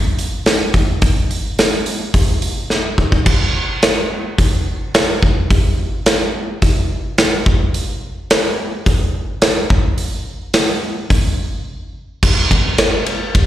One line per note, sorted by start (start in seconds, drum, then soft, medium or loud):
0.19 open hi-hat soft
0.46 snare medium
0.46 open hi-hat soft
0.74 kick medium
0.74 open hi-hat soft
1.02 kick medium
1.02 open hi-hat medium
1.31 open hi-hat soft
1.59 snare medium
1.59 open hi-hat medium
1.86 open hi-hat soft
2.14 kick medium
2.14 open hi-hat medium
2.42 open hi-hat soft
2.70 snare soft
2.98 kick medium
3.12 kick medium
3.26 kick medium
3.26 crash medium
3.82 snare medium
3.82 open hi-hat soft
4.38 kick medium
4.38 open hi-hat soft
4.94 snare medium
4.94 open hi-hat soft
5.23 kick medium
5.51 kick loud
5.51 open hi-hat soft
6.06 snare medium
6.06 open hi-hat soft
6.62 kick medium
6.62 open hi-hat medium
7.18 snare medium
7.18 open hi-hat soft
7.46 kick medium
7.74 open hi-hat soft
8.30 snare loud
8.30 open hi-hat soft
8.86 kick medium
8.86 open hi-hat soft
9.42 snare medium
9.42 open hi-hat soft
9.70 kick loud
9.98 open hi-hat soft
10.54 snare medium
10.54 open hi-hat soft
11.10 kick medium
11.10 open hi-hat medium
12.23 kick loud
12.23 crash loud
12.51 kick medium
12.51 ride medium
12.78 snare loud
12.78 ride medium
13.06 ride medium
13.35 kick loud
13.35 ride medium